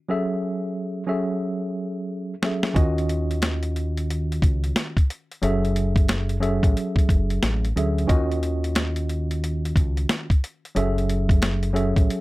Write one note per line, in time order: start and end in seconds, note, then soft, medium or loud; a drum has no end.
0.09 1.03 F#3 medium
0.09 1.03 C#4 medium
0.09 1.03 G#4 medium
0.09 1.04 A4 medium
0.09 1.04 E5 loud
1.07 2.33 F#3 medium
1.07 2.33 C#4 medium
1.07 2.34 G#4 medium
1.07 2.34 A4 medium
1.07 2.34 E5 medium
2.43 2.74 F#3 medium
2.43 2.73 C#4 medium
2.43 2.74 G#4 medium
2.43 2.75 A4 medium
2.43 2.75 E5 medium
2.43 snare medium
2.63 snare medium
2.74 4.39 D#2 loud
2.74 4.93 D#3 medium
2.74 4.93 C#4 medium
2.74 4.93 F4 medium
2.74 4.94 F#4 medium
2.74 4.94 D#5 medium
2.74 kick loud
2.74 closed hi-hat medium
2.98 closed hi-hat soft
3.09 closed hi-hat medium
3.31 closed hi-hat medium
3.42 snare loud
3.42 closed hi-hat medium
3.63 closed hi-hat medium
3.76 closed hi-hat medium
3.97 closed hi-hat medium
4.10 closed hi-hat medium
4.32 closed hi-hat medium
4.42 4.71 C#2 medium
4.42 kick medium
4.42 closed hi-hat medium
4.64 closed hi-hat medium
4.76 snare loud
4.76 closed hi-hat medium
4.97 kick medium
4.97 closed hi-hat medium
5.10 closed hi-hat medium
5.32 closed hi-hat soft
5.42 6.59 F#1 loud
5.42 6.36 F#3 medium
5.42 6.36 C#4 medium
5.42 6.37 G#4 medium
5.42 6.37 A4 medium
5.42 6.37 E5 loud
5.42 closed hi-hat medium
5.65 closed hi-hat soft
5.76 closed hi-hat medium
5.96 kick loud
5.96 closed hi-hat medium
6.09 snare loud
6.09 closed hi-hat medium
6.29 closed hi-hat medium
6.40 7.66 F#3 medium
6.40 7.67 C#4 medium
6.40 7.67 G#4 medium
6.40 7.67 A4 medium
6.40 7.68 E5 medium
6.40 closed hi-hat medium
6.63 6.74 A1 loud
6.63 kick medium
6.63 closed hi-hat medium
6.77 closed hi-hat medium
6.96 kick medium
6.96 closed hi-hat medium
7.09 7.38 F#1 medium
7.09 kick medium
7.09 closed hi-hat medium
7.30 closed hi-hat medium
7.43 7.72 A1 medium
7.43 snare loud
7.43 closed hi-hat medium
7.65 closed hi-hat soft
7.76 8.05 D2 medium
7.76 8.07 F#3 medium
7.76 8.06 C#4 medium
7.76 8.08 G#4 medium
7.76 8.08 A4 medium
7.76 8.08 E5 medium
7.76 closed hi-hat medium
7.98 closed hi-hat soft
8.07 9.72 D#2 loud
8.07 10.26 D#3 medium
8.07 10.26 C#4 medium
8.07 10.27 F4 medium
8.07 10.27 F#4 medium
8.07 10.27 D#5 loud
8.07 kick loud
8.07 closed hi-hat medium
8.32 closed hi-hat soft
8.43 closed hi-hat medium
8.64 closed hi-hat medium
8.75 snare loud
8.75 closed hi-hat medium
8.96 closed hi-hat medium
9.09 closed hi-hat medium
9.31 closed hi-hat medium
9.44 closed hi-hat medium
9.65 closed hi-hat medium
9.76 10.05 C#2 medium
9.76 kick medium
9.76 closed hi-hat medium
9.97 closed hi-hat medium
10.09 snare loud
10.09 closed hi-hat medium
10.30 kick medium
10.30 closed hi-hat medium
10.44 closed hi-hat medium
10.65 closed hi-hat soft
10.75 11.93 F#1 loud
10.75 11.69 F#3 medium
10.75 11.70 C#4 medium
10.75 11.70 G#4 medium
10.75 11.70 A4 medium
10.75 11.70 E5 loud
10.75 closed hi-hat medium
10.98 closed hi-hat soft
11.10 closed hi-hat medium
11.29 kick loud
11.29 closed hi-hat medium
11.42 snare loud
11.42 closed hi-hat medium
11.63 closed hi-hat medium
11.73 12.21 F#3 medium
11.73 12.21 C#4 medium
11.73 12.21 G#4 medium
11.73 12.21 A4 medium
11.73 12.21 E5 medium
11.73 closed hi-hat medium
11.96 12.08 A1 loud
11.96 kick medium
11.96 closed hi-hat medium
12.10 closed hi-hat medium